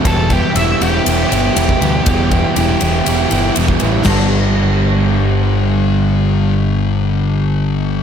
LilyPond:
<<
  \new Staff \with { instrumentName = "Lead electric guitar" } { \time 4/4 \key g \major \tempo 4 = 120 a'8 g'8 e''8 g'2~ g'8~ | g'2. r4 | r1 | r1 | }
  \new Staff \with { instrumentName = "Clean electric guitar" } { \time 4/4 \key g \major g8 b8 e'8 g8 b8 e'8 b8 g8 | g8 b8 e'8 g8 b8 e'8 b8 g8 | <g b d' a'>1~ | <g b d' a'>1 | }
  \new Staff \with { instrumentName = "Overdriven electric guitar" } { \time 4/4 \key g \major <e g b e'>8 <g b e'>8 <e g b e'>8 <g b e'>8 <e g b e'>8 <e g b e'>8 <e g b e'>8 <g b e'>8 | <e g b e'>8 <g b e'>8 <e g b e'>8 <g b e'>8 <e g b e'>8 <e g b e'>8 <e g b e'>8 <g b e'>8 | <g, d g b d'>1~ | <g, d g b d'>1 | }
  \new Staff \with { instrumentName = "Distorted electric guitar" } { \clef bass \time 4/4 \key g \major <e, b, e>8 <b, e>8 <e, b, e>8 <e, b, e>8 <e, b, e>8 <e, b, e>8 <e, b, e>8 <b, e>8 | <e, b, e>8 <b, e>8 <e, b, e>8 <e, b, e>8 <e, b, e>8 <e, b, e>8 <e, b, e>8 <b, e>8 | <g, d g>1~ | <g, d g>1 | }
  \new Staff \with { instrumentName = "Picked electric bass" } { \clef bass \time 4/4 \key g \major e,,4 e,,8 e,,8 e,,8 g,,8 e,,8 d,8 | e,,4 e,,8 e,,8 e,,8 g,,8 e,,8 a,,8 | g,,1~ | g,,1 | }
  \new DrumStaff \with { instrumentName = "Drums" } \drummode { \time 4/4 <bd cymr>8 <bd cymr>8 cymr8 cymr8 cymr8 cymr8 cymr16 bd16 cymr8 | <bd cymr>8 <bd cymr>8 cymr8 cymr8 cymr8 cymr8 cymr16 bd16 cymr8 | <cymc bd sn>4 r4 r4 r4 | r4 r4 r4 r4 | }
>>